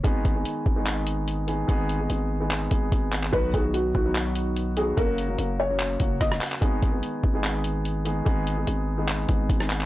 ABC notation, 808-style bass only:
X:1
M:4/4
L:1/8
Q:1/4=146
K:G#m
V:1 name="808-style bass" clef=bass
G,,, G,,, z G,,,4- G,,, | G,,,2 G,,,3 G,,, G,,,2 | B,,, B,,,2 B,,,4- B,,, | F,,,2 F,,,3 F,,, F,,, z |
G,,, G,,, z G,,,4- G,,, | G,,,2 G,,,3 G,,, G,,,2 |]